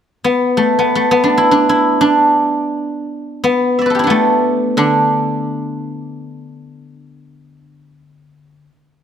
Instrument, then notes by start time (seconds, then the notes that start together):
guzheng
0.24 B3
0.57 A3
0.79 B3
0.95 A3
1.11 B3
1.24 D4
1.38 E4
1.51 D4
1.69 E4
2.01 D4
3.44 B3
3.79 D5 E5
3.86 B4
3.90 A4
3.95 G4
3.99 E4
4.04 B3 D4
4.10 A3
4.77 D3 D4